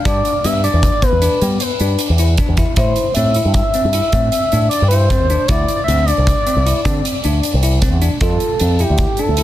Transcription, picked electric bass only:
0.05 0.20 G2 medium
0.44 0.67 G2 medium
0.73 0.88 E2 medium
1.12 1.27 E2 medium
1.42 1.56 G3 medium
1.80 1.95 G2 medium
2.10 2.39 E2 medium
2.48 2.63 E2 medium
2.77 2.92 A2 medium
3.16 3.39 A2 medium
3.45 3.60 G2 medium
3.85 3.99 G2 medium
4.13 4.28 A2 medium
4.53 4.67 A2 medium
4.82 5.20 G2 medium
5.20 5.35 D#2 medium
5.49 5.64 D2 medium
5.88 6.10 D2 medium
6.18 6.32 C2 medium
6.56 6.71 C2 medium
6.85 7.00 D3 medium
7.25 7.40 D2 medium
7.54 7.93 C2 medium
7.93 8.07 E2 medium
8.21 8.36 F2 medium
8.61 8.83 F2 medium
8.90 9.05 D2 medium
9.29 9.43 D2 medium

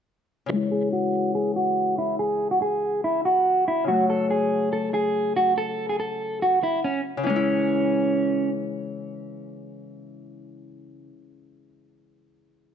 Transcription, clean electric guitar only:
0.50 0.66 C#5 medium
0.72 0.88 G#4 medium
0.93 1.32 F#4 medium
1.35 1.51 G#4 medium
1.56 1.96 F#4 medium
1.98 2.14 E4 medium
2.19 2.49 G#4 medium
2.51 2.59 F#4 medium
2.62 3.02 G#4 medium
3.04 3.20 E4 medium
3.25 3.65 F#4 medium
3.68 3.84 E4 medium
3.88 4.04 F#4 medium
4.10 4.26 A4 medium
4.31 4.70 G#4 medium
4.73 4.89 A4 medium
4.94 5.34 G#4 medium
5.36 5.53 F#4 medium
5.58 5.87 A4 loud
5.89 5.97 G#4 medium
6.00 6.39 A4 medium
6.42 6.58 F#4 medium
6.63 6.79 E4 medium
6.84 7.00 C#4 medium
7.27 8.49 C#4 medium

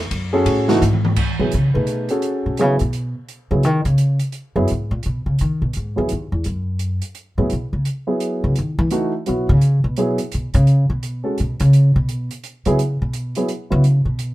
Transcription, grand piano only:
0.33 0.66 C#4 medium
0.33 0.67 F#4 medium
0.33 0.66 G#4 medium
0.33 0.67 A4 medium
0.69 0.80 E3 medium
0.69 0.81 A3 medium
0.69 0.81 D#4 medium
0.69 0.80 F#4 loud
1.39 1.51 F#3 medium
1.39 1.51 B3 medium
1.39 1.51 E4 soft
1.39 1.51 G#4 medium
1.74 2.07 A3 medium
1.74 2.07 D#4 soft
1.74 2.07 G#4 soft
1.74 2.07 B4 medium
2.10 2.55 C#4 medium
2.10 2.55 F#4 medium
2.10 2.55 G#4 medium
2.10 2.56 A4 medium
2.59 2.78 F#3 medium
2.59 2.78 B3 medium
2.59 2.78 E4 medium
2.59 2.78 G#4 medium
3.51 3.62 F#3 medium
3.51 3.62 B3 soft
3.51 3.62 E4 soft
3.51 3.62 G#4 medium
4.56 4.67 F#3 medium
4.56 4.67 B3 medium
4.56 4.67 E4 medium
4.56 4.67 G#4 medium
5.96 6.08 F#3 medium
5.96 6.08 B3 medium
5.96 6.09 E4 medium
5.96 6.09 G#4 medium
7.38 7.49 F#3 medium
7.38 7.49 B3 medium
7.38 7.49 E4 medium
7.38 7.50 G#4 medium
8.07 8.53 F#3 medium
8.07 8.53 B3 medium
8.07 8.53 E4 medium
8.07 8.53 G#4 medium
8.91 9.11 E3 medium
8.91 9.11 A3 medium
8.91 9.11 D#4 medium
8.91 9.11 F#4 medium
9.26 9.46 F#3 medium
9.26 9.47 B3 soft
9.26 9.47 E4 soft
9.26 9.47 F#4 medium
9.98 10.17 F#3 medium
9.98 10.17 B3 medium
9.98 10.17 E4 medium
9.98 10.18 G#4 medium
11.24 11.36 G#3 medium
11.24 11.36 C#4 soft
11.24 11.36 F#4 soft
11.24 11.36 A4 medium
12.66 12.77 F#3 medium
12.66 12.77 B3 medium
12.66 12.78 E4 medium
12.66 12.78 G#4 medium
13.36 13.48 F#3 medium
13.36 13.48 B3 medium
13.36 13.47 E4 medium
13.36 13.48 G#4 medium
13.70 13.82 F#3 medium
13.70 13.82 B3 soft
13.70 13.82 E4 medium
13.70 13.82 F#4 medium

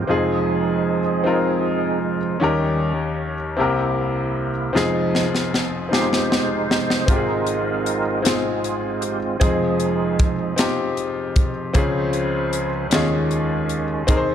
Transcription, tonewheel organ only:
0.02 0.09 G4 soft
0.09 2.38 F3 soft
0.09 2.38 G#3 soft
0.09 1.99 C4 soft
0.09 2.00 D#4 medium
0.09 2.00 G#4 medium
2.41 2.93 D#3 soft
2.41 2.94 G3 soft
2.41 2.94 C#4 medium
3.58 4.71 C3 soft
3.58 4.71 A#3 soft
3.58 4.72 E4 medium
4.76 5.27 F3 soft
4.76 5.28 G#3 soft
4.76 5.28 D#4 medium
5.93 7.05 G#3 medium
5.93 7.05 D#4 medium
5.93 7.12 C5 medium
7.07 9.37 G#3 soft
7.07 8.23 C4 soft
7.07 8.21 D#4 medium
7.07 8.21 F4 medium
7.07 8.21 A#4 medium
8.18 8.25 G4 medium
8.18 9.03 G#4 medium
8.24 9.37 C4 medium
8.24 9.37 F4 medium
9.01 9.19 G4 medium
9.40 10.54 F3 soft
9.40 10.54 G#3 soft
9.40 10.55 C4 soft
9.40 10.55 D#4 soft
9.40 10.24 G#4 medium
11.74 12.87 C#3 soft
11.74 12.87 F3 soft
11.74 12.88 C5 medium
12.90 14.04 D#3 medium
12.90 14.04 G#3 soft
12.90 14.04 C#4 medium
14.08 14.35 D#3 soft
14.08 14.35 C4 soft
14.08 14.35 D#4 soft

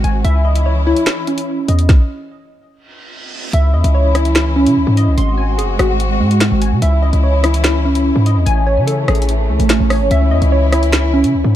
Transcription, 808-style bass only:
0.04 0.24 G#1 loud
0.25 0.94 C#2 loud
1.68 1.88 E2 loud
3.53 3.75 C#2 loud
3.74 3.84 E2 loud
3.84 4.68 C#2 loud
4.66 4.78 C#3 loud
4.77 4.86 C#2 loud
4.87 5.09 G#2 loud
5.07 5.17 C2 loud
5.18 5.60 G#1 loud
5.59 5.78 F#1 loud
5.79 6.22 G#1 loud
6.20 6.50 G#2 loud
6.51 6.73 G#1 loud
6.72 6.82 C3 loud
6.82 7.12 C#2 loud
7.13 8.12 C#2 loud
8.16 8.38 G#2 loud
8.36 8.46 E2 loud
8.46 8.79 A1 loud
8.77 9.07 C#3 loud
9.08 9.51 A1 loud
9.49 9.59 C#2 loud
9.60 9.79 A1 loud
9.80 10.02 A1 loud
10.01 10.10 G#1 loud
10.11 10.33 C#2 loud
10.31 10.41 E2 loud
10.42 11.25 C#2 loud
11.24 11.36 C#3 loud
11.34 11.44 C#2 loud
11.44 11.56 G#2 loud

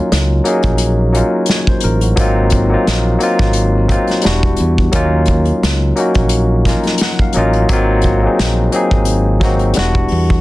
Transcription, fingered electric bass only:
0.12 0.40 C#2 medium
0.64 1.21 A#1 medium
1.85 2.12 A1 medium
2.18 2.75 G#1 loud
2.88 3.16 A#1 medium
3.40 3.97 G#1 medium
4.26 4.54 E1 loud
4.60 4.88 E2 medium
4.94 5.51 D#2 medium
5.63 5.91 C#2 medium
6.16 6.73 A#1 medium
7.37 7.64 A1 medium
7.70 8.26 G#1 medium
8.40 8.67 A#1 medium
8.92 9.72 G#1 medium
9.78 10.05 E1 medium
10.12 10.40 E2 medium

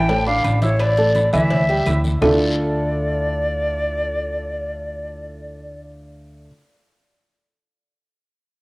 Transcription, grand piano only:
0.09 0.23 A3 medium
0.09 0.23 A4 medium
0.27 0.56 D4 medium
0.27 0.56 D5 medium
0.27 0.56 D6 medium
0.62 0.91 E4 medium
0.62 0.92 E5 medium
0.62 0.92 E6 medium
0.98 1.27 A3 medium
0.98 1.27 A4 medium
0.98 1.27 A5 medium
1.33 1.62 E3 loud
1.33 1.62 E4 loud
1.33 1.62 E5 medium
1.69 1.84 G3 medium
1.69 1.84 G4 medium
1.69 1.84 G5 medium
1.87 2.16 E4 medium
1.87 2.16 E5 medium
1.87 2.16 E6 medium
2.22 6.46 D3 medium
2.22 6.46 A3 medium
2.22 6.46 D4 medium
2.22 6.47 E4 medium
2.22 6.47 F4 medium
2.22 6.47 A4 loud

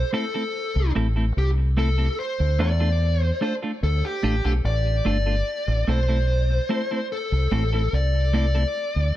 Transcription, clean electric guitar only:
0.13 0.24 A3 medium
0.13 0.24 C4 medium
0.13 0.24 E4 medium
0.13 0.24 A4 loud
0.34 0.43 A3 medium
0.34 0.43 C4 medium
0.34 0.43 E4 medium
0.34 0.42 A4 medium
0.95 1.06 A3 medium
0.95 1.06 C4 medium
0.95 1.06 E4 loud
0.95 1.07 A4 medium
1.16 1.25 A3 medium
1.16 1.25 C4 medium
1.16 1.24 E4 medium
1.16 1.24 A4 medium
1.77 1.88 A3 medium
1.77 1.88 C4 medium
1.77 1.88 E4 medium
1.77 1.89 A4 medium
1.98 2.07 A3 soft
1.98 2.07 C4 soft
1.98 2.06 E4 medium
1.98 2.06 A4 medium
2.59 2.70 A3 medium
2.59 2.70 D4 medium
2.59 2.70 F4 medium
2.59 2.71 A4 medium
2.80 2.89 A3 medium
2.80 2.89 D4 medium
2.80 2.88 F4 medium
2.80 2.88 A4 medium
3.41 3.52 A3 medium
3.41 3.52 D4 medium
3.41 3.53 F4 medium
3.41 3.53 A4 medium
3.62 3.71 A3 soft
3.62 3.71 D4 medium
3.62 3.71 F4 medium
3.62 3.70 A4 medium
4.23 4.34 A3 medium
4.23 4.34 D4 medium
4.23 4.35 F4 medium
4.23 4.35 A4 medium
4.44 4.53 A3 soft
4.44 4.53 D4 medium
4.44 4.53 F4 medium
4.44 4.53 A4 medium
5.05 5.16 A3 medium
5.05 5.16 D4 medium
5.05 5.17 F4 medium
5.05 5.17 A4 medium
5.26 5.35 A3 soft
5.26 5.35 D4 soft
5.26 5.35 F4 medium
5.26 5.34 A4 medium
5.88 5.98 A3 medium
5.88 5.99 C4 medium
5.88 5.99 E4 medium
5.88 5.99 A4 medium
6.08 6.17 A3 medium
6.08 6.17 C4 medium
6.08 6.17 E4 medium
6.08 6.17 A4 medium
6.69 6.80 A3 medium
6.69 6.81 C4 medium
6.69 6.81 E4 medium
6.69 6.81 A4 medium
6.91 7.00 A3 soft
6.91 6.99 C4 medium
6.91 6.99 E4 medium
6.91 6.99 A4 medium
7.52 7.62 A3 medium
7.52 7.63 C4 medium
7.52 7.63 E4 medium
7.52 7.63 A4 medium
7.73 7.81 A3 medium
7.73 7.81 C4 medium
7.73 7.81 E4 medium
7.73 7.81 A4 medium
8.33 8.44 A3 medium
8.33 8.45 C4 medium
8.33 8.45 E4 medium
8.33 8.45 A4 medium
8.55 8.63 A3 medium
8.55 8.63 C4 medium
8.55 8.63 E4 medium
8.55 8.63 A4 medium

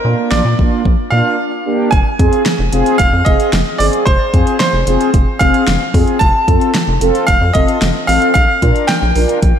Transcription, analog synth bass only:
0.05 0.15 A#2 loud
0.32 0.41 A#1 loud
0.45 0.55 A#2 medium
0.59 0.69 A#1 medium
0.85 0.95 A#1 loud
1.12 1.22 A#2 loud
1.92 2.02 F1 loud
2.19 2.29 F2 loud
2.59 2.69 F1 loud
2.73 2.83 F1 medium
3.00 3.09 F1 loud
3.13 3.23 F2 medium
3.26 3.36 F1 loud
3.53 3.63 F1 loud
3.80 3.90 G1 medium
4.07 4.17 F1 loud
4.34 4.44 F2 loud
4.73 4.83 F1 loud
4.87 4.97 F1 loud
5.14 5.24 F1 loud
5.41 5.51 F1 loud
5.67 5.77 F1 loud
5.94 6.04 F2 loud
6.21 6.31 F1 loud
6.48 6.58 F2 medium
6.88 6.98 F1 loud
7.01 7.11 F1 loud
7.28 7.38 F1 loud
7.41 7.51 F2 loud
7.55 7.65 F1 medium
7.82 7.92 F1 loud
8.08 8.18 A1 loud
8.35 8.45 A#1 loud
8.62 8.72 A#2 loud
9.02 9.12 A#1 loud
9.16 9.26 A#1 loud
9.43 9.52 A#1 loud

